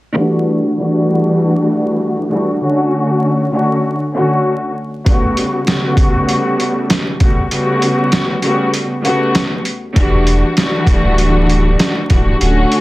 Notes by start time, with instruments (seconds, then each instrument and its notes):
0.14 string section E3 G3 A3 D4 F#4
0.78 string section E3 G3 A3 D4 F#4
2.29 string section E3 G3 A3 D4 F#4
2.59 string section D3 A3 C#4 F#4
3.51 string section D3 A3 C#4 F#4
4.14 string section D3 A3 C#4 F#4
5.06 string section C#3 G3 A3 B3 F#4, kick, closed hi-hat
5.37 closed hi-hat
5.65 string section C#3 G3 A3 B3 F#4, snare, closed hi-hat
5.97 kick, closed hi-hat
6.29 closed hi-hat
6.60 closed hi-hat
6.90 snare, closed hi-hat
7.20 string section C#3 G3 A3 B3 F#4, kick, closed hi-hat
7.50 string section C#3 G3 A3 B3 F#4, closed hi-hat
7.82 closed hi-hat
8.12 snare, closed hi-hat
8.42 string section C#3 G3 A3 B3 F#4, closed hi-hat
8.74 closed hi-hat
9.03 string section C#3 G3 A3 B3 F#4, closed hi-hat
9.35 snare, closed hi-hat
9.65 closed hi-hat
9.94 sub bass E1, string section E3 G3 A3 D4 F#4, kick, closed hi-hat
10.27 closed hi-hat
10.57 string section E3 G3 A3 D4 F#4, snare, closed hi-hat
10.87 sub bass D1, kick, closed hi-hat
11.18 closed hi-hat
11.49 closed hi-hat
11.79 snare, closed hi-hat
12.09 sub bass C#1, string section E3 G3 A3 D4 F#4, kick, closed hi-hat
12.39 sub bass D1, string section D3 A3 C#4 F#4, closed hi-hat
12.72 closed hi-hat